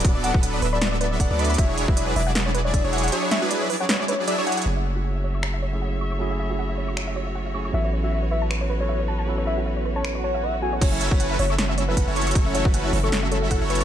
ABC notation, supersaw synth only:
X:1
M:4/4
L:1/16
Q:"Swing 16ths" 1/4=156
K:F#m
V:1 name="Supersaw synth"
[F,B,Dd]3 [F,DA]3 [F,B,DAe]6 [F,B,DAf] [F,B,DAd]3 | [F,DEGc]3 [F,B]3 [F,DEGd]6 [F,DEGe] [F,DEGc]3 | [F,DEGc]3 [F,DEGB]3 [F,DEGd]6 [F,DEGe] [F,DEGc]3 | z16 |
z16 | z16 | z16 | [F,CEAc]3 [F,CEAB]3 [F,CEAe]6 [F,CAf] [F,CEAc]3 |
[F,CEAc]3 [F,CEAB]3 [F,CEAe]6 [F,CEAf] [F,CEAc]3 |]